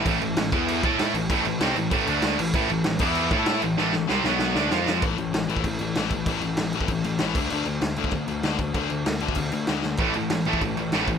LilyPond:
<<
  \new Staff \with { instrumentName = "Distorted electric guitar" } { \clef bass \time 4/4 \key a \minor \tempo 4 = 193 <a, e a>8 <a, e>8 <a, e>8 <e b e'>4 <a e' a'>4 <a, e>8 | <a, e a>8 <a, e>8 <c g c'>8 <a, e>8 <a, e a>8 <d a d'>4 <a, e>8 | <a, e a>8 <a, e>8 <a, e>8 <e b e'>4 <a e' a'>4 <a, e>8 | <a, e a>8 <a, e>8 <c g c'>8 <b, fis b>4 <d a d'>8 <f c' f'>4 |
\key d \mixolydian <a, e a>8 <a, e>8 <a, e>8 <a, e a>8 <a, e>8 <a, e>8 <a, e a>8 <a, e>8 | <a, e a>8 <a, e>8 <a, e>8 <a, e a>8 <a, e>8 <a, e>8 <a, e a>8 <d a d'>8 | <d a d'>8 <d a>8 <d a>8 <d a d'>8 <d a>8 <d a>8 <d a d'>8 <d a>8 | <d a d'>8 <d a>8 <d a>8 <d a d'>8 <d a>8 <d a>8 <d a d'>8 <d a>8 |
<a, e a>8 <a, e>8 <a, e>8 <a, e a>8 <a, e>8 <a, e>8 <a, e a>8 <a, e>8 | }
  \new Staff \with { instrumentName = "Distorted electric guitar" } { \clef bass \time 4/4 \key a \minor <a, e a>8 <a, e>8 <a, e>8 <e b e'>4 <a e' a'>4 <a, e>8 | <a, e a>8 <a, e>8 <c g c'>8 <a, e>8 <a, e a>8 <d a d'>4 <a, e>8 | <a, e a>8 <a, e>8 <a, e>8 <e b e'>4 <a e' a'>4 <a, e>8 | <a, e a>8 <a, e>8 <c g c'>8 <b, fis b>4 <d a d'>8 <f c' f'>4 |
\key d \mixolydian r1 | r1 | r1 | r1 |
<a, e a>8 <a, e>8 <a, e>8 <a, e a>8 <a, e>8 <a, e>8 <a, e a>8 <a, e>8 | }
  \new Staff \with { instrumentName = "Picked electric bass" } { \clef bass \time 4/4 \key a \minor a,,8 a,,8 a,,8 e,4 a,4 a,,8 | a,,8 a,,8 c,8 a,,8 a,,8 d,4 a,,8 | a,,8 a,,8 a,,8 e,4 a,4 a,,8 | a,,8 a,,8 c,8 b,,4 d,8 f,4 |
\key d \mixolydian a,,8 a,,8 a,,8 a,,8 a,,8 a,,8 a,,4 | a,,8 a,,8 a,,8 a,,8 a,,8 a,,8 a,,8 d,8 | d,8 d,8 d,8 d,8 d,8 d,8 d,4 | d,8 d,8 d,8 d,8 d,8 d,8 d,4 |
a,,8 a,,8 a,,8 a,,8 a,,8 a,,8 a,,4 | }
  \new DrumStaff \with { instrumentName = "Drums" } \drummode { \time 4/4 <cymc bd>8 cymc8 <cymc sn>8 <cymc bd>8 cymc8 <cymc bd>8 <cymc sn>8 cymc8 | <cymc bd>8 cymc8 <cymc sn>8 cymc8 <cymc bd>8 cymc8 <cymc sn>8 cymc8 | <cymc bd>8 cymc8 <cymc sn>8 <cymc bd>8 cymc8 <cymc bd>8 <cymc sn>8 cymc8 | sn8 sn8 sn8 sn8 sn8 sn8 sn8 sn8 |
<cymc bd>8 cymc8 <cymc sn>8 cymc16 bd16 <cymc bd>8 cymc8 <cymc sn>8 <cymc bd>8 | <cymc bd>8 cymc8 <cymc sn>8 cymc16 bd16 <cymc bd>8 cymc8 <cymc sn>8 <cymc bd>8 | cymc8 cymc8 <cymc sn>8 cymc16 bd16 <cymc bd>8 cymc8 <cymc sn>8 <cymc bd>8 | <cymc bd>8 cymc8 <cymc sn>8 cymc16 bd16 <cymc bd>8 cymc8 <cymc sn>8 sn8 |
<cymc bd>8 cymc8 <cymc sn>8 cymc16 bd16 <cymc bd>8 cymc8 <cymc sn>8 <cymc bd>8 | }
>>